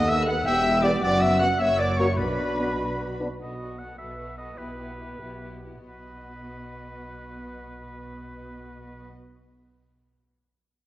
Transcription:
Already playing: D#2 B3 A4 D#5 F#5
0.07 E5 E6
0.26 B3 A4 F#5 F#6
0.45 E1 E2 B3 G4 E5 G5 E6
0.83 B3 G4 D5 D6
1.02 F#1 F#2 B3 F#4 D5 F#5 D6
1.21 E5 E6
1.39 B3 F#4 F#5 F#6
1.58 F#1 F#2 A#3 F#4 C#5 E5 E6
1.78 D5 D6
1.98 A#3 F#4 C#5 C#6
2.17 B1 B2 D4 F#4 B4 D5 B5
2.21 B4
2.59 B3 D4
3.20 B3 D4
3.40 B1 B2 B3 F#4 A4 D#5
3.61 B3 F#4 A4
3.79 B3 F#4 A4 F#5
3.98 B1 B2 B3 F#4 A4 B4 E5
4.19 B3 F#4 A4
4.38 B3 F#4 A4 D#5
4.57 B1 B2 B3 E4 G4 B4
4.76 B3 E4 G4
4.98 B3 E4 G4
5.19 B1 B2 B3 E4 G4
5.40 B3 E4 G4
5.63 B3 E4 G4
5.85 B1 B2 B3 F#4 B4 D#5

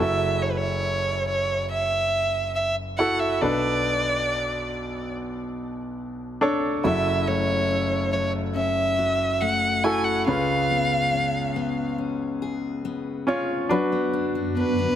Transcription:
Already playing: C#4
0.00 F#1 F#2 E4 F#4 A4 E5
0.42 C#5
0.51 B4
0.58 C#5
1.28 C#5
1.71 E5
2.55 E5
2.98 E4 F#4 A4 F#5
3.19 E5
3.41 B1 B2 D4 A4 B4 D5
6.41 D4 A4 C#5
6.84 F#1 F#2 E4 F#4 A4 E5
7.27 A3 C#5
7.71 C#4
8.13 A3 C#5
8.56 C#4 E5
8.99 F#4
9.41 A3 F#5
9.84 E4 F#4 A4 G#5
10.04 F#5
10.26 C#2 C#3 C#4 F4 B4 F5
10.70 B3
11.13 C#4
11.56 B3
11.98 C#4
12.42 G#4
12.85 B3
13.27 C#4 F4 G#4 C#5
13.69 F#2 D3 F#3 B3 D4 F#4 B4
13.92 B3
14.13 D4
14.35 F#4
14.57 D4 B4
14.79 B3

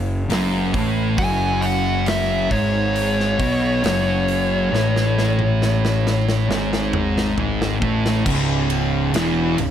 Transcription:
Already playing: F#1 F#2
0.29 F#1 F#2 F#3, snare, open hi-hat
0.74 A1 A2 A3, kick, open hi-hat
1.18 F#1 F#2 F#3 G#5, kick, open hi-hat
1.62 F#5, open hi-hat
2.06 E5, snare, open hi-hat
2.51 G#1 G#2 G#3 C#5, kick, open hi-hat
2.96 open hi-hat
3.20 snare
3.39 B1 B2 B3, kick, open hi-hat
3.83 F#1 F#2 F#3, snare, open hi-hat
4.28 open hi-hat
4.72 A1 A2 A3, snare
4.96 snare
5.18 snare
5.39 high tom
5.62 snare
5.85 snare
6.07 snare
6.28 snare
6.49 G#1 G#2 G#3, snare
6.73 snare
6.93 mid tom
7.18 snare
7.38 floor tom
7.62 snare
7.81 A1 A2 A3, kick
8.06 snare
8.25 C#1 C#2 C#3, kick, crash
8.70 ride
9.13 E1 E2 E3, snare, ride
9.58 C#1 C#2, ride

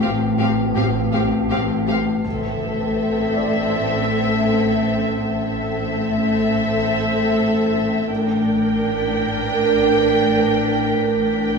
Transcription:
Already playing: A1 C4 F4
0.01 A1 A2 C4 G4 F5
0.38 A2 C4 G4 F5
0.75 A1 A2 C4 G4 F5
1.13 A2 C4 G4 F5
1.50 A1 A2 C4 G4 F5
1.87 A3 C4 G4 F5
2.25 A1 A2 C4 A4 E5, impact
3.36 D5
5.17 A1 A2 C4 A4 E5
8.09 A1 A2 D4 A#4 G5 A#6
8.80 B6
10.98 A1 A2 D4 A#4 G5

